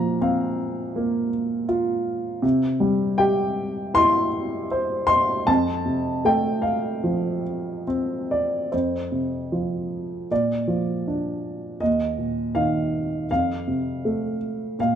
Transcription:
0.00 2.40 A#2 medium
0.00 1.28 F3 soft
0.00 0.17 A#5 medium
0.21 1.65 C4 medium
0.21 1.65 F5 medium
0.96 2.40 A#3 medium
1.69 2.41 F4 medium
2.42 5.43 C3 medium
2.80 4.28 G3 medium
3.18 4.67 G4 medium
3.18 3.96 G5 medium
3.94 5.43 E4 medium
3.94 5.05 C6 loud
4.71 5.46 C5 medium
5.07 5.44 C6 loud
5.47 8.69 F2 medium
5.47 6.21 A5 medium
5.86 7.41 C3 soft
6.25 7.84 A3 medium
6.25 6.61 G5 medium
6.62 7.83 F5 medium
7.04 8.69 F3 soft
7.87 8.70 C4 soft
8.31 8.70 D5 medium
8.72 10.27 F2 soft
8.72 10.26 C5 soft
9.12 10.27 C3 soft
9.52 10.28 F3 soft
10.31 11.77 A#2 soft
10.31 11.86 D5 medium
10.68 11.77 F3 soft
11.07 11.79 D4 soft
11.81 13.26 D#2 medium
11.81 12.51 D#5 medium
12.18 13.26 A#2 soft
12.55 13.28 D#3 soft
12.55 13.29 F5 medium
13.31 14.75 F2 soft
13.31 14.37 F5 medium
13.68 14.75 C3 soft
14.05 14.77 A3 soft
14.79 14.95 A#2 medium
14.79 14.95 F5 medium

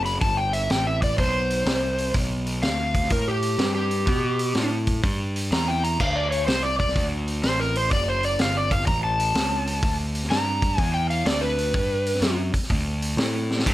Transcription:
0.00 0.20 F#1 loud
0.05 0.21 B5 medium
0.05 open hi-hat medium
0.21 0.68 G1 medium
0.21 0.37 A5 loud
0.21 kick loud
0.21 open hi-hat medium
0.37 0.53 G5 medium
0.53 0.69 E5 medium
0.53 open hi-hat medium
0.70 1.17 A1 medium
0.70 0.86 G5 medium
0.70 snare loud
0.70 open hi-hat medium
0.87 1.02 E5 medium
1.02 1.18 D5 medium
1.02 kick medium
1.02 open hi-hat medium
1.18 1.65 B1 medium
1.18 2.13 C5 loud
1.18 kick loud
1.18 open hi-hat medium
1.50 open hi-hat medium
1.66 2.13 C2 loud
1.66 snare loud
1.66 open hi-hat medium
1.98 open hi-hat medium
2.14 2.61 B1 medium
2.14 kick loud
2.14 open hi-hat medium
2.46 open hi-hat medium
2.63 3.10 D2 medium
2.63 3.09 F5 medium
2.63 snare loud
2.63 open hi-hat medium
2.94 kick medium
2.94 open hi-hat medium
3.03 snare soft
3.10 3.58 A2 loud
3.10 3.27 A#4 loud
3.10 kick loud
3.10 open hi-hat medium
3.28 3.74 G4 loud
3.42 open hi-hat medium
3.59 4.06 G2 loud
3.59 snare loud
3.59 open hi-hat medium
3.75 4.69 G4 loud
3.91 open hi-hat medium
4.07 4.54 B2 medium
4.07 kick loud
4.07 open hi-hat medium
4.39 open hi-hat medium
4.55 5.02 A2 medium
4.55 snare medium
4.55 open hi-hat medium
4.87 kick medium
4.87 open hi-hat medium
5.03 5.50 G2 loud
5.03 kick loud
5.03 open hi-hat medium
5.36 open hi-hat medium
5.52 5.98 E2 loud
5.52 5.68 A#5 medium
5.52 snare loud
5.52 open hi-hat medium
5.68 5.83 G5 medium
5.84 5.99 A#5 medium
5.84 open hi-hat medium
6.00 6.46 D2 medium
6.00 6.16 F5 medium
6.00 kick loud
6.00 crash loud
6.15 6.31 D5 medium
6.31 6.47 C#5 medium
6.31 open hi-hat medium
6.47 6.95 C2 medium
6.47 6.63 C5 medium
6.47 snare loud
6.47 open hi-hat medium
6.63 6.78 D5 medium
6.79 7.05 D5 medium
6.79 kick medium
6.79 open hi-hat medium
6.88 snare soft
6.96 7.42 D2 loud
6.96 kick loud
6.96 open hi-hat medium
7.28 open hi-hat medium
7.43 7.90 A1 loud
7.43 7.59 C5 loud
7.43 snare loud
7.43 open hi-hat medium
7.60 7.75 A#4 medium
7.75 7.92 C5 medium
7.75 open hi-hat medium
7.91 8.38 F#1 medium
7.91 8.08 D5 loud
7.91 kick loud
7.91 open hi-hat medium
8.09 8.24 C5 medium
8.23 8.40 D5 medium
8.23 open hi-hat medium
8.39 8.86 G1 medium
8.39 8.56 F5 medium
8.39 snare loud
8.39 open hi-hat medium
8.57 8.72 D5 medium
8.71 8.87 F5 medium
8.71 kick medium
8.71 open hi-hat medium
8.80 snare soft
8.87 9.34 A1 medium
8.87 9.03 A#5 loud
8.87 kick loud
8.87 open hi-hat medium
9.04 9.97 A5 loud
9.20 open hi-hat medium
9.35 9.82 C#2 loud
9.35 snare loud
9.35 open hi-hat medium
9.67 open hi-hat medium
9.83 10.29 D2 medium
9.83 kick loud
9.83 open hi-hat medium
10.15 open hi-hat medium
10.23 snare soft
10.30 10.77 G2 medium
10.30 10.80 A#5 loud
10.30 snare medium
10.30 open hi-hat medium
10.62 kick medium
10.62 open hi-hat medium
10.78 11.25 E2 loud
10.78 10.93 G#5 loud
10.78 kick loud
10.78 open hi-hat medium
10.94 11.10 G5 loud
11.10 11.26 F5 medium
11.10 open hi-hat medium
11.25 11.73 D2 loud
11.25 11.42 D5 medium
11.25 snare loud
11.25 open hi-hat medium
11.41 12.35 B4 loud
11.58 open hi-hat medium
11.74 12.21 G2 medium
11.74 kick loud
11.74 open hi-hat medium
12.06 open hi-hat medium
12.15 snare soft
12.21 12.52 F#2 medium
12.21 snare loud
12.21 open hi-hat medium
12.54 muted picked electric bass stroke soft
12.54 kick medium
12.54 open hi-hat medium
12.63 snare soft
12.70 13.17 D2 loud
12.70 kick loud
12.70 open hi-hat medium
13.02 open hi-hat medium
13.17 13.64 A2 loud
13.17 snare loud
13.17 open hi-hat medium
13.51 snare medium
13.59 snare medium
13.66 13.74 G2 medium
13.66 kick loud
13.66 crash loud
13.66 crash medium

